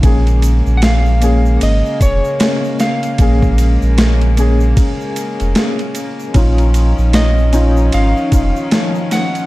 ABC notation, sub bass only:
X:1
M:4/4
L:1/16
Q:"Swing 16ths" 1/4=76
K:Bbm
V:1 name="Sub bass" clef=bass
B,,,3 B,,,4- B,,, A,,, z F,,, z4 z | B,,,3 B,,,4- B,,, z3 F,,, z4 | B,,,3 B,,,4- B,,, A,,, z F,,, z4 z |]